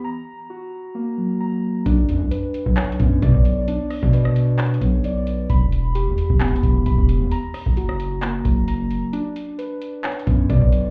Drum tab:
HH |------------------------------------------------|x-----x-----x-----x-----x-x-x-x-----x-----x-----|x-----o-----x-----x-----x-x-x-x-----x-----x-----|x-----x-----x-----x-----x-x-x-x-----x-----x-----|
CP |------------------------------------------------|------------------------x-----------------------|------------------------x-----------------------|------------------------x-----------------------|
SD |------------------------------------------------|------------------------------------------------|------r--------r--------------------------------|------------------------------------------------|
BD |------------------------------------------------|o--------------------o--------o-----o--o--------|---------o--------------------o-----------------|o--------------------o--------o-----o--o--------|

HH |x-----o-----x-----x-----x-----x-----x-----x-----|x-----x-----x-----x-----x-x-x-x-----x-----x-----|
CP |------------------------x-----------------------|------------------------x-----------------------|
SD |------r--------r--------------------------------|------------------------------------------------|
BD |---------o--------------------o-----------------|------------------------------o-----o--o--------|